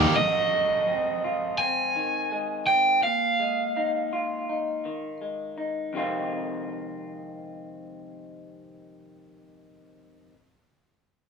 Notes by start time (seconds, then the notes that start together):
Already playing: D#3 A#3 D#4 G4
0.00 G3 A#3
0.16 F2 D#5
0.53 G#3
0.88 C4
1.24 F4
1.58 C4 G#5
1.96 D#3
2.32 G#3
2.67 C4 G5
3.03 A#2 F5
3.40 G#3
3.77 D#4
4.13 F4
4.49 D#4
4.85 D#3
5.21 G#3
5.58 D#4
5.93 F2 C3 D#3 G#3 C4
5.97 F4